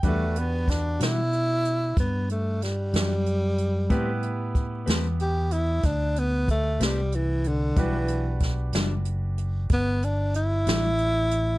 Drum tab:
HH |xxxxxxxxxxxx|xxxxxxxxxxxx|xxxxxxxxxxxx|
SD |--oo----oo--|---o-----o--|--oo-----o--|
BD |o-o---o-----|o-o---o-o---|o-o---o-----|